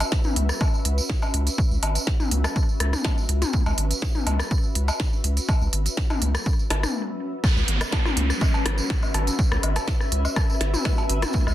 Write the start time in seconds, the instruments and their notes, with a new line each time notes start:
Already playing: ambient pad C#4 F#4 B4 E5
0.00 open hi-hat, tambourine, cowbell, low woodblock
0.12 kick, snare, tambourine
0.24 mid tom, tambourine
0.36 analog synth bass C#2, open hi-hat
0.49 cross-stick, tambourine
0.61 kick, tambourine, cowbell, low woodblock
0.74 tambourine
0.85 analog synth bass C#2, open hi-hat
0.98 tambourine
1.10 kick, snare
1.22 tambourine, cowbell, low woodblock
1.34 analog synth bass C#2, open hi-hat
1.47 open hi-hat, tambourine
1.58 kick
1.71 analog synth bass C#2, tambourine
1.83 analog synth bass G#1, open hi-hat, cowbell, low woodblock
1.95 open hi-hat, tambourine
2.07 kick, snare
2.20 mid tom, tambourine
2.31 analog synth bass C#2, open hi-hat
2.44 cross-stick, tambourine, cowbell, low woodblock
2.56 kick, tambourine
2.69 tambourine
2.80 analog synth bass C#2, cross-stick, open hi-hat
2.93 cross-stick, mid tom, tambourine
3.04 kick, snare, tambourine, cowbell, low woodblock
3.18 tambourine
3.29 analog synth bass C#2, open hi-hat
3.42 open hi-hat, mid tom, tambourine
3.53 kick, tambourine
3.66 analog synth bass C#2, tambourine, cowbell, low woodblock
3.78 analog synth bass G#1, open hi-hat
3.91 open hi-hat, tambourine
4.02 kick, snare, tambourine
4.15 mid tom, tambourine
4.27 analog synth bass C#2, open hi-hat, cowbell, low woodblock
4.39 cross-stick, tambourine
4.51 kick, tambourine
4.64 tambourine
4.75 analog synth bass C#2, open hi-hat
4.88 tambourine, cowbell, low woodblock
5.00 kick, snare, tambourine
5.13 tambourine
5.24 analog synth bass C#2, open hi-hat
5.37 open hi-hat, tambourine
5.49 kick, tambourine, cowbell, low woodblock
5.61 analog synth bass C#2, tambourine
5.73 analog synth bass G#1, open hi-hat
5.86 open hi-hat, tambourine
5.97 kick, snare, tambourine
6.10 mid tom, tambourine, cowbell, low woodblock
6.22 analog synth bass C#2, open hi-hat
6.35 cross-stick, tambourine
6.46 kick, tambourine
6.59 tambourine
6.70 analog synth bass G#1, cross-stick, snare, open hi-hat, cowbell, low woodblock
6.83 cross-stick, mid tom, tambourine
7.44 ambient pad C#4, kick, cross-stick, tambourine, downlifter
7.57 analog synth bass C#2, ambient pad B4, tambourine
7.68 analog synth bass G#1, ambient pad F#4, open hi-hat
7.81 cross-stick, open hi-hat, tambourine, low woodblock
7.92 kick, snare, tambourine, cowbell
8.05 cross-stick, mid tom, tambourine
8.17 analog synth bass C#2, open hi-hat
8.30 cross-stick, tambourine
8.36 ambient pad E5
8.41 kick, tambourine, low woodblock
8.54 tambourine, cowbell
8.66 analog synth bass G#1, cross-stick, snare, open hi-hat
8.78 tambourine
8.90 kick, cross-stick, snare
9.03 tambourine, low woodblock
9.14 analog synth bass G#1, cross-stick, open hi-hat, cowbell
9.27 open hi-hat, tambourine
9.39 kick, tambourine
9.52 analog synth bass C#2, cross-stick, tambourine
9.63 analog synth bass G#1, open hi-hat, low woodblock
9.76 cross-stick, open hi-hat, tambourine, cowbell
9.88 kick, snare, tambourine
10.00 cross-stick, tambourine
10.12 analog synth bass C#2, open hi-hat
10.25 tambourine, low woodblock
10.36 kick, cross-stick, tambourine, cowbell
10.50 tambourine
10.61 analog synth bass G#1, cross-stick, snare, open hi-hat
10.74 mid tom, tambourine
10.85 kick, cross-stick, snare, low woodblock
10.98 tambourine, cowbell
11.10 analog synth bass G#1, open hi-hat
11.22 cross-stick, open hi-hat, mid tom, tambourine
11.33 kick, tambourine
11.47 analog synth bass C#2, cross-stick, tambourine, low woodblock